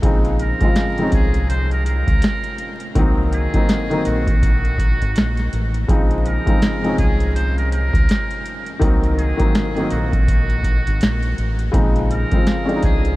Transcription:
0.02 fingered electric bass A#1, felt piano C#3 F3 G#3 C4 D#4, kick, closed hi-hat
0.25 closed hi-hat
0.39 muted trumpet A#4, closed hi-hat
0.61 felt piano C#3 F3 G#3 C4, kick, closed hi-hat
0.65 felt piano F4
0.76 snare, closed hi-hat
0.97 felt piano C3 F3 G#3 C4 D#4, closed hi-hat
1.04 felt piano C#4
1.12 fingered electric bass C2, muted trumpet G#4, kick, closed hi-hat
1.34 closed hi-hat
1.49 muted trumpet C5, closed hi-hat
1.71 muted trumpet A#4, closed hi-hat
1.86 muted trumpet A#4, closed hi-hat
2.07 fingered electric bass C#2, kick, closed hi-hat
2.22 snare, closed hi-hat
2.44 closed hi-hat
2.58 closed hi-hat
2.80 closed hi-hat
2.95 fingered electric bass C2, felt piano D#3 F#3 A#3 C4 D#4, kick, closed hi-hat
3.33 muted trumpet G#4, closed hi-hat
3.54 felt piano D#3 F#3 A#3 C4 D#4, kick, closed hi-hat
3.69 snare, closed hi-hat
3.90 felt piano D#3 F#3 A#3 C4 D#4, closed hi-hat
4.05 fingered electric bass A#1, muted trumpet F#4, closed hi-hat
4.27 kick, closed hi-hat
4.43 kick, closed hi-hat
4.65 closed hi-hat
4.78 kick, closed hi-hat
5.02 fingered electric bass G#1, closed hi-hat
5.16 fingered electric bass A#1, snare, closed hi-hat
5.37 snare, closed hi-hat
5.53 fingered electric bass A1, closed hi-hat
5.74 closed hi-hat
5.88 fingered electric bass A#1, felt piano C#3 F3 G#3 C4 D#4, kick, closed hi-hat
6.11 closed hi-hat
6.26 muted trumpet A#4, closed hi-hat
6.46 felt piano C#3 F3 G#3 C4 D#4, kick, closed hi-hat
6.62 snare, closed hi-hat
6.82 felt piano C3 F3 G#3 C4 D#4, closed hi-hat
6.88 felt piano C#4
6.98 fingered electric bass C2, muted trumpet G#4, kick, closed hi-hat
7.20 closed hi-hat
7.35 muted trumpet C5, closed hi-hat
7.57 muted trumpet A#4, closed hi-hat
7.72 muted trumpet A#4, closed hi-hat
7.94 fingered electric bass C#2, kick, closed hi-hat
8.09 snare, closed hi-hat
8.31 closed hi-hat
8.46 closed hi-hat
8.66 closed hi-hat
8.80 fingered electric bass C2, felt piano D#3 F#3 A#3 C4 D#4, kick, closed hi-hat
9.03 closed hi-hat
9.18 muted trumpet G#4, closed hi-hat
9.37 felt piano D#3 F#3 A#3 C4 D#4, kick, closed hi-hat
9.55 snare, closed hi-hat
9.76 felt piano D#3 F#3 A#3 C4 D#4, closed hi-hat
9.90 fingered electric bass A#1, muted trumpet F#4, closed hi-hat
10.13 kick, closed hi-hat
10.28 kick, closed hi-hat
10.50 closed hi-hat
10.64 kick, closed hi-hat
10.87 fingered electric bass G#1, closed hi-hat
11.01 fingered electric bass A#1, snare, closed hi-hat
11.23 closed hi-hat
11.38 fingered electric bass A1, closed hi-hat
11.59 closed hi-hat
11.72 fingered electric bass A#1, felt piano C#3 F3 G#3 C4 D#4, kick, closed hi-hat
11.96 closed hi-hat
12.11 muted trumpet A#4, closed hi-hat
12.31 felt piano C#3 F3 G#3 C4 F4, kick, closed hi-hat
12.47 snare, closed hi-hat
12.65 felt piano F3 G#3 C4 C#4 D4, closed hi-hat
12.76 felt piano D#4
12.83 fingered electric bass C2, muted trumpet G#4, kick, closed hi-hat
13.05 closed hi-hat

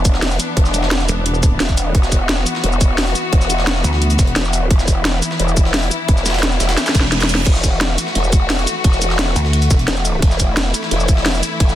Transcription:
Already playing: wobble bass E1, string section E3 B3 D4
0.05 kick, closed hi-hat, cabasa
0.14 snare
0.22 snare, closed hi-hat, open hi-hat
0.31 snare, cabasa
0.40 closed hi-hat, cabasa
0.57 wobble bass E1, kick, closed hi-hat
0.65 snare, cabasa
0.74 closed hi-hat, cabasa
0.83 snare
0.91 snare, closed hi-hat
1.00 snare, cabasa
1.08 wobble bass E1, closed hi-hat, cabasa
1.26 closed hi-hat
1.34 cabasa
1.43 kick, closed hi-hat, cabasa
1.60 wobble bass E1, snare, closed hi-hat
1.69 kick, cabasa
1.77 closed hi-hat, cabasa
1.95 wobble bass E1, string section F#4, kick, closed hi-hat
2.03 snare, cabasa
2.12 kick, closed hi-hat, cabasa
2.29 snare, closed hi-hat
2.46 closed hi-hat, cabasa
2.55 snare
2.64 wobble bass E1, closed hi-hat
2.72 cabasa
2.81 kick, closed hi-hat, cabasa
2.98 snare, closed hi-hat, open hi-hat
3.07 snare, cabasa
3.15 closed hi-hat, cabasa
3.33 wobble bass E1, kick, closed hi-hat
3.41 snare, cabasa
3.50 closed hi-hat, cabasa
3.58 snare
3.67 snare, closed hi-hat
3.76 snare
3.84 wobble bass D2, closed hi-hat, cabasa
3.93 snare
4.02 closed hi-hat
4.10 closed hi-hat, cabasa
4.19 wobble bass E1, kick, snare, closed hi-hat, cabasa
4.27 closed hi-hat
4.36 wobble bass E1, snare, closed hi-hat
4.45 cabasa
4.53 closed hi-hat, cabasa
4.70 wobble bass E1, string section E4, kick, closed hi-hat
4.79 snare, cabasa
4.88 kick, closed hi-hat, cabasa
5.05 snare, closed hi-hat
5.22 closed hi-hat, cabasa
5.31 snare
5.39 wobble bass E1, closed hi-hat
5.48 cabasa
5.57 kick, closed hi-hat, cabasa
5.65 snare
5.74 snare, closed hi-hat, open hi-hat
5.83 snare, cabasa
5.91 closed hi-hat, cabasa
6.08 wobble bass E1, kick, closed hi-hat
6.17 snare, cabasa
6.26 snare, closed hi-hat, cabasa
6.30 snare, closed hi-hat
6.34 snare, closed hi-hat
6.39 snare, closed hi-hat
6.43 snare, closed hi-hat
6.52 snare, cabasa
6.60 wobble bass E1, snare, closed hi-hat, cabasa
6.69 snare, closed hi-hat
6.77 snare, closed hi-hat, reverse cymbal
6.86 snare, closed hi-hat, cabasa
6.89 snare
6.95 wobble bass E1, kick, snare, closed hi-hat, cabasa
7.00 snare
7.03 snare
7.12 snare, closed hi-hat
7.20 snare, closed hi-hat, cabasa
7.23 snare
7.29 snare, closed hi-hat, cabasa
7.35 snare, closed hi-hat
7.46 wobble bass E1, string section A3 F#4, kick, closed hi-hat, crash, ride bell
7.55 snare, cabasa
7.64 kick, closed hi-hat, cabasa
7.81 snare, closed hi-hat, ride bell
7.98 closed hi-hat, cabasa
8.07 snare
8.15 wobble bass E1, closed hi-hat, ride bell
8.24 cabasa
8.33 kick, closed hi-hat, cabasa
8.50 snare, closed hi-hat, open hi-hat, ride bell
8.58 snare, cabasa
8.67 closed hi-hat, cabasa
8.84 wobble bass E1, kick, closed hi-hat, ride bell
8.93 snare, cabasa
9.02 closed hi-hat, cabasa
9.10 snare
9.19 snare, closed hi-hat, ride bell
9.27 snare
9.36 wobble bass D2, closed hi-hat, cabasa
9.45 snare
9.53 closed hi-hat, ride bell
9.62 closed hi-hat, cabasa
9.71 wobble bass E1, kick, snare, closed hi-hat, cabasa
9.79 closed hi-hat
9.88 wobble bass E1, snare, closed hi-hat, ride bell
9.96 cabasa
10.05 closed hi-hat, cabasa
10.22 wobble bass E1, string section E4, kick, closed hi-hat, ride bell
10.31 snare, cabasa
10.40 kick, closed hi-hat, cabasa
10.57 snare, closed hi-hat, ride bell
10.74 closed hi-hat, cabasa
10.83 snare
10.91 wobble bass E1, closed hi-hat, ride bell
11.00 cabasa
11.09 kick, closed hi-hat, cabasa
11.17 snare
11.26 snare, closed hi-hat, open hi-hat, ride bell
11.34 snare, cabasa
11.43 closed hi-hat, cabasa
11.60 wobble bass E1, kick, closed hi-hat, ride bell
11.69 snare, cabasa

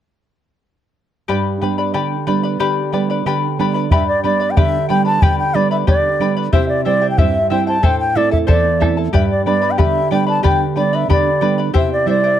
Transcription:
1.28 nylon-string guitar G2, charango G4 B4 D5 G5 B5
1.61 nylon-string guitar G3 B3 D4, charango B4 D5 G5 B5
1.78 charango B4 D5 B5
1.94 nylon-string guitar D3, charango G4 B4 D5 G5 B5
2.27 nylon-string guitar G3 B3 D4, charango B4 D5 G5 B5
2.43 charango B4 D5 B5
2.60 nylon-string guitar D3, charango G4 B4 D5 G5 B5
2.92 nylon-string guitar G3 B3 D4, charango B4 D5 G5 B5
3.10 charango B4 D5 B5
3.26 nylon-string guitar D3, charango G4 B4 D5 G5 B5
3.59 nylon-string guitar G3 B3 D4, charango B4 D5 G5 B5
3.74 charango B4 D5 B5
3.91 nylon-string guitar G2, charango G4 B4 D5 G5 B5, bansuri E5, bombo low
4.08 bansuri D5
4.24 nylon-string guitar G3 B3 D4, charango B4 D5 G5 B5, bansuri D5
4.40 charango B4 D5 B5
4.51 bansuri G5
4.57 nylon-string guitar D3, charango G4 B4 D5 G5 B5, bansuri E5, bombo low
4.89 nylon-string guitar G3 B3 D4, charango B4 D5 G5 B5, bansuri G5
5.05 charango B4 D5 B5, bansuri A5
5.22 nylon-string guitar D3, charango G4 B4 D5 G5 B5, bansuri G5, bombo low
5.39 bansuri G5
5.54 nylon-string guitar G3 B3 D4, charango B4 D5 G5 B5, bansuri D5
5.71 charango B4 D5 B5, bansuri E5
5.87 nylon-string guitar D3, charango G4 B4 D5 G5 B5, bansuri D5, bombo low
6.20 nylon-string guitar G3 B3 D4, charango B4 D5 G5 B5
6.37 charango B4 D5 B5
6.53 nylon-string guitar C3, charango E4 G4 C5 E5 G5, bansuri E5, bombo low
6.69 bansuri D5
6.85 nylon-string guitar G3 C4 E4, charango E4 C5 E5 G5, bansuri D5
7.02 charango E4 C5 G5
7.11 bansuri G5
7.18 nylon-string guitar G2, charango E4 G4 C5 E5 G5, bansuri E5, bombo low
7.50 nylon-string guitar G3 C4 E4, charango E4 C5 E5 G5, bansuri G5
7.67 charango E4 C5 G5, bansuri A5
7.83 nylon-string guitar A2, charango E4 A4 C5 E5 A5, bansuri G5, bombo low
7.99 bansuri G5
8.15 nylon-string guitar A3 C4 E4, charango E4 A4 E5 A5, bansuri D5
8.31 charango E4 A4 A5, bansuri E5, bombo low
8.47 nylon-string guitar E2, charango E4 A4 C5 E5 A5, bansuri D5, bombo low
8.80 nylon-string guitar A3 C4 E4, charango E4 A4 E5 A5, bombo rim, bombo low
8.97 charango E4 A4 A5
9.13 nylon-string guitar G2, charango G4 B4 D5 G5 B5, bansuri E5, bombo low
9.31 bansuri D5
9.46 nylon-string guitar G3 B3 D4, charango B4 D5 G5 B5, bansuri D5
9.62 charango B4 D5 B5
9.71 bansuri G5
9.78 nylon-string guitar D3, charango G4 B4 D5 G5 B5, bansuri E5, bombo low
10.11 nylon-string guitar G3 B3 D4, charango B4 D5 G5 B5, bansuri G5
10.27 charango B4 D5 B5, bansuri A5
10.43 nylon-string guitar D3, charango G4 B4 D5 G5 B5, bansuri G5, bombo low
10.76 nylon-string guitar G3 B3 D4, charango B4 D5 G5 B5, bansuri D5
10.93 charango B4 D5 B5, bansuri E5
11.09 nylon-string guitar D3, charango G4 B4 D5 G5 B5, bansuri D5, bombo low
11.41 nylon-string guitar G3 B3 D4, charango B4 D5 G5 B5
11.58 charango B4 D5 B5
11.74 nylon-string guitar C3, charango E4 G4 C5 E5 G5, bansuri E5, bombo low
11.93 bansuri D5
12.06 nylon-string guitar G3 C4 E4, charango E4 C5 E5 G5, bansuri D5
12.24 charango E4 C5 G5

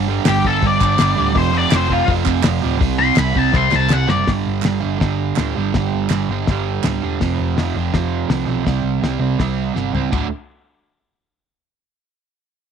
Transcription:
Already playing: picked electric bass G1
0.08 overdriven electric guitar G2 D3 G3
0.25 picked electric bass G1, overdriven electric guitar G2 D3, lead electric guitar G4, snare, clap, open hi-hat
0.30 overdriven electric guitar G3
0.45 picked electric bass G1, overdriven electric guitar G2 D3 G3, lead electric guitar A4, kick
0.62 picked electric bass G1, overdriven electric guitar G2 D3 G3, kick, open hi-hat
0.67 lead electric guitar D5
0.80 picked electric bass G1, overdriven electric guitar G2 D3 G3, kick, clap
0.98 picked electric bass G1, overdriven electric guitar G2 D3 G3, snare, clap, open hi-hat
1.16 picked electric bass D1, overdriven electric guitar G2 D3 G3
1.33 picked electric bass F1, overdriven electric guitar F2 C3 F3, kick, open hi-hat
1.38 lead electric guitar C5
1.51 overdriven electric guitar F2 C3 F3
1.57 lead electric guitar D5
1.71 picked electric bass F1, overdriven electric guitar F2 C3 F3, snare, clap, open hi-hat
1.76 lead electric guitar C5
1.89 overdriven electric guitar F2 C3 F3, kick
1.93 lead electric guitar F4
2.07 picked electric bass F1, overdriven electric guitar F2 C3 F3, kick, open hi-hat
2.25 picked electric bass F1, overdriven electric guitar F2 C3 F3, kick, clap
2.43 picked electric bass F1, overdriven electric guitar F2 C3 F3, snare, clap, open hi-hat
2.62 picked electric bass D1, overdriven electric guitar F2 C3 F3
2.79 picked electric bass C2, overdriven electric guitar C3 G3 C4, kick, open hi-hat
2.99 overdriven electric guitar C3 G3 C4, lead electric guitar C6
3.16 picked electric bass C2, overdriven electric guitar C3 G3 C4, lead electric guitar B5, snare, clap, open hi-hat
3.34 picked electric bass C2, overdriven electric guitar C3 G3 C4, kick
3.38 lead electric guitar A5
3.52 picked electric bass C2, overdriven electric guitar C3 G3 C4, lead electric guitar C6, kick, snare
3.69 overdriven electric guitar C3 G3 C4, snare, clap
3.74 picked electric bass C2, lead electric guitar A5
3.89 picked electric bass C2, overdriven electric guitar C3 G3 C4, snare, clap
3.93 lead electric guitar F#5
4.07 picked electric bass F#1, overdriven electric guitar C3 G3 C4, lead electric guitar D5, snare
4.26 picked electric bass G1, overdriven electric guitar G2 D3 G3, kick, snare, open hi-hat
4.47 picked electric bass G1
4.62 picked electric bass G1, overdriven electric guitar G2 D3 G3, snare, clap, open hi-hat
4.80 picked electric bass G1, overdriven electric guitar G2 D3 G3
4.99 picked electric bass G1, overdriven electric guitar G2 D3 G3, kick, snare, open hi-hat
5.36 picked electric bass D1, overdriven electric guitar G2 D3 G3, snare, clap, open hi-hat
5.56 picked electric bass G1, overdriven electric guitar G2 D3 G3
5.74 picked electric bass G1, overdriven electric guitar G2 D3 G3, kick, snare, open hi-hat
5.93 picked electric bass G1
6.10 picked electric bass G1, overdriven electric guitar G2, snare, clap, open hi-hat
6.14 overdriven electric guitar D3 G3
6.29 picked electric bass G1, overdriven electric guitar G2 D3
6.33 overdriven electric guitar G3
6.47 picked electric bass G1, overdriven electric guitar G2 D3 G3, kick, snare, open hi-hat
6.84 picked electric bass D1, overdriven electric guitar G2 D3 G3, snare, clap, open hi-hat
7.02 picked electric bass E1, overdriven electric guitar G2 D3 G3
7.20 picked electric bass F1, overdriven electric guitar F2 C3 F3, kick, snare, open hi-hat
7.39 picked electric bass F1
7.57 picked electric bass F1, overdriven electric guitar F2 C3 F3, snare, open hi-hat
7.74 picked electric bass F1, overdriven electric guitar F2 C3 F3
7.93 picked electric bass F1, overdriven electric guitar F2 C3 F3, kick, snare, open hi-hat
8.30 picked electric bass C2, overdriven electric guitar F2 C3 F3, snare, open hi-hat
8.47 picked electric bass B1, overdriven electric guitar F2 C3 F3
8.64 picked electric bass C2, overdriven electric guitar C3 G3 C4, kick, snare, open hi-hat
8.83 picked electric bass C2
9.02 picked electric bass C2, overdriven electric guitar C3 G3 C4, snare, open hi-hat
9.19 picked electric bass C2, overdriven electric guitar C3 G3 C4
9.38 picked electric bass C2, overdriven electric guitar C3 G3 C4, kick, snare, open hi-hat
9.74 picked electric bass G1, overdriven electric guitar C3 G3 C4, snare
9.93 picked electric bass C#2, overdriven electric guitar C3 G3 C4, floor tom
10.11 picked electric bass D1, overdriven electric guitar D2 A2 D3 A3 F#4, kick, floor tom, ride bell

